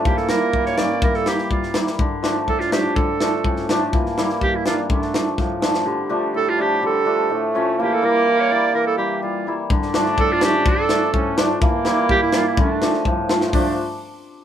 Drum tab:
HH |--------|--------|--------|--------|
SD |-oo--oo-|-ooo-ooo|--o--oo-|--o--oo-|
BD |o---o---|o---o---|o---o---|o---o---|

HH |--------|--------|--------|--------|
SD |-ooo--o-|-oo-o-oo|--------|--------|
BD |o---o---|o---o---|--------|--------|

HH |--------|--------|--------|--------|
SD |--------|--------|-ooo--o-|--o---o-|
BD |--------|--------|o---o---|o---o---|

HH |--------|--------|o-------|
SD |--o---o-|--oo--oo|--------|
BD |o---o---|o---o---|o-------|